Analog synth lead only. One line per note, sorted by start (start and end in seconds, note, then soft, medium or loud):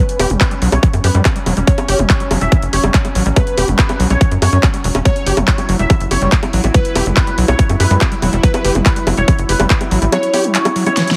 0.00 0.25 B4 loud
0.41 0.61 B4 medium
0.72 0.92 C#5 medium
1.04 1.24 B4 medium
1.67 1.94 C#5 loud
2.10 2.30 C#5 medium
2.41 2.61 E5 loud
2.73 2.93 C#5 loud
3.36 3.63 B4 loud
3.79 3.99 B4 medium
4.10 4.30 C#5 loud
4.42 4.62 C#5 loud
5.05 5.32 C#5 loud
5.48 5.68 C#5 medium
5.79 5.99 E5 medium
6.11 6.31 C#5 medium
6.74 7.01 B4 loud
7.17 7.37 B4 medium
7.48 7.68 C#5 medium
7.80 8.00 B4 loud
8.43 8.70 B4 loud
8.86 9.06 B4 loud
9.17 9.38 C#5 loud
9.49 9.69 B4 loud
10.12 10.39 C#5 loud
10.55 10.75 C#5 medium
10.86 11.06 C#5 loud